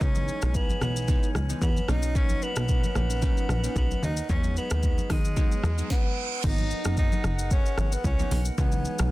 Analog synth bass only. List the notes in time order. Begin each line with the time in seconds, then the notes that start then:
0.01 C#2
0.43 B1
0.82 B1
1.35 C#2
1.62 E2
1.89 B1
2.57 B1
2.96 A#1
3.49 A#1
3.76 B1
4.03 D#2
4.30 E2
4.71 D#2
5.10 D#2
5.63 E2
6.44 G#1
6.85 F#1
7.24 F#1
7.78 G#1
8.04 C#2
8.32 B1
8.58 C#2
9.00 B1